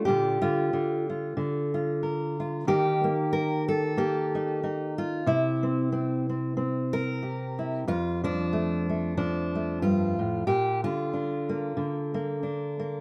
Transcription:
0.05 0.43 A#2 medium
0.05 0.41 D3 soft
0.05 0.40 F4 medium
0.05 1.07 G4 loud
0.42 0.71 D3 medium
0.42 1.07 F4 medium
0.73 1.36 D3 soft
1.10 1.73 F4 soft
1.37 2.67 D3 medium
1.74 2.38 F4 soft
2.03 3.32 A#4 soft
2.40 2.64 F4 soft
2.67 5.24 D#3 medium
2.67 3.04 A#3 medium
2.67 4.34 D#4 soft
2.67 3.97 G4 loud
3.04 3.97 A#3 medium
3.33 3.68 A#4 loud
3.68 4.62 A4 loud
3.97 5.24 A#3 medium
3.97 4.98 G4 medium
4.35 4.62 D#4 soft
4.63 5.24 D#4 soft
4.98 5.27 F4 medium
5.26 7.83 C3 medium
5.26 7.22 E4 medium
5.63 5.92 C4 medium
5.92 6.29 C4 soft
6.29 6.56 C4 soft
6.57 7.83 C4 medium
6.93 7.87 A#4 loud
7.22 7.84 G4 soft
7.59 7.84 E4 soft
7.88 10.44 F2 medium
7.88 8.24 F4 loud
8.24 9.17 F3 medium
8.24 9.16 D4 medium
8.53 8.88 A3 soft
8.89 9.54 A3 soft
9.17 10.44 F3 medium
9.17 9.82 D4 medium
9.55 10.45 A3 soft
9.82 10.18 G2 medium
9.82 10.47 F4 medium
10.19 10.47 A2 medium
10.47 10.84 A#2 medium
10.47 10.83 G4 loud
10.84 11.76 D3 medium
10.84 12.13 F4 medium
11.13 12.42 D4 soft
11.49 12.14 A#3 soft
11.77 13.01 D3 medium
12.14 12.79 A#3 medium
12.43 13.01 D4 soft
12.80 13.01 A#3 soft

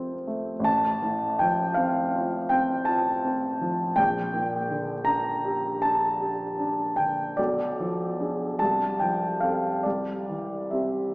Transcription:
0.00 0.63 F2 soft
0.00 0.27 A3 soft
0.00 0.69 C4 soft
0.00 0.69 F4 soft
0.00 0.27 C5 medium
0.27 0.66 A3 soft
0.59 3.90 A1 soft
0.64 1.39 A5 medium
1.02 1.62 A2 soft
1.39 2.00 F3 soft
1.39 1.76 G5 medium
1.74 2.36 C4 soft
1.74 2.49 F5 medium
2.15 2.73 F4 soft
2.49 3.10 C4 soft
2.49 2.87 G5 medium
2.85 3.46 F4 soft
2.85 3.96 A5 medium
3.25 3.83 C4 soft
3.61 3.97 F3 soft
3.96 7.34 A#1 soft
3.96 5.06 G5 medium
4.34 4.92 A#2 soft
4.70 5.29 D3 soft
5.05 5.67 D4 soft
5.05 5.81 A#5 medium
5.45 6.05 G4 soft
5.82 6.43 D4 soft
5.82 6.97 A5 medium
6.20 6.81 G4 soft
6.59 7.22 D4 soft
6.96 7.38 D3 soft
6.96 7.37 G5 medium
7.37 8.56 B1 soft
7.37 8.59 D5 medium
7.80 8.44 F3 soft
8.20 8.56 D4 soft
8.20 8.56 G#4 soft
8.59 9.81 C2 soft
8.59 9.00 A5 medium
9.00 9.67 F3 soft
9.00 9.41 G5 medium
9.41 9.80 C4 soft
9.41 9.81 A4 soft
9.41 9.84 F5 medium
9.83 11.14 C2 soft
9.83 10.71 D5 medium
10.29 11.00 E3 soft
10.71 11.14 C4 soft
10.71 11.14 G4 soft
10.71 11.14 E5 soft

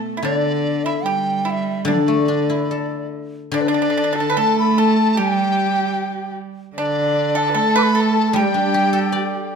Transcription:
0.00 0.25 B2 medium
0.17 0.24 E4 soft
0.23 1.84 D3 medium
0.23 1.02 D3 medium
0.23 0.82 D4 medium
0.23 0.35 C#5 medium
0.35 0.86 D5 medium
0.85 1.05 E4 medium
0.85 1.06 E5 medium
1.04 1.88 G3 medium
1.04 1.43 G4 medium
1.04 1.46 G5 medium
1.45 1.84 E4 medium
1.45 1.51 G5 medium
1.50 1.86 E5 medium
1.85 3.50 D3 medium
1.85 3.12 D3 medium
1.85 3.09 D4 medium
1.85 3.08 D5 medium
2.08 3.75 A3 soft
2.28 3.95 D4 soft
2.50 4.16 E4 soft
2.71 4.37 A4 soft
3.52 5.96 D3 medium
3.52 3.67 D3 medium
3.52 3.66 D4 medium
3.52 3.67 D4 medium
3.52 3.62 D5 medium
3.61 3.70 B4 medium
3.68 4.38 D3 medium
3.68 3.73 D4 medium
3.68 4.17 D4 medium
3.68 4.16 D5 medium
3.74 3.81 D4 medium
3.82 3.89 D4 medium
3.90 3.96 D4 medium
3.98 4.03 D4 medium
4.04 4.11 D4 medium
4.13 4.19 D4 medium
4.13 4.34 A4 medium
4.18 4.27 D4 medium
4.18 4.36 A5 medium
4.30 4.36 B4 medium
4.34 5.20 A3 medium
4.34 4.73 A4 medium
4.34 4.74 A4 medium
4.39 4.57 A5 loud
4.59 4.80 B5 medium
4.77 5.14 A4 medium
4.77 5.15 A4 medium
4.77 5.21 A5 medium
5.17 6.37 G3 medium
5.17 6.33 G4 medium
5.17 6.38 G5 loud
6.76 7.56 D3 medium
6.76 7.51 D4 medium
6.76 7.33 D4 medium
6.76 7.39 D5 medium
7.35 7.53 A4 medium
7.35 7.56 A5 loud
7.50 7.58 B4 medium
7.54 8.36 A3 medium
7.54 7.74 A4 medium
7.54 7.94 A4 medium
7.54 7.79 A5 loud
7.76 7.94 B4 medium
7.76 7.84 D6 loud
7.83 7.97 B5 loud
7.95 8.32 A4 medium
7.95 8.28 A4 medium
7.95 8.02 B5 medium
8.01 8.40 A5 medium
8.28 8.36 A4 medium
8.33 9.55 G3 medium
8.33 9.52 G3 medium
8.33 9.52 G4 medium
8.33 9.49 G4 medium
8.38 9.54 G5 medium
8.54 9.55 D4 soft
8.74 9.55 G4 soft
8.93 9.55 A4 medium
9.12 9.55 D5 soft

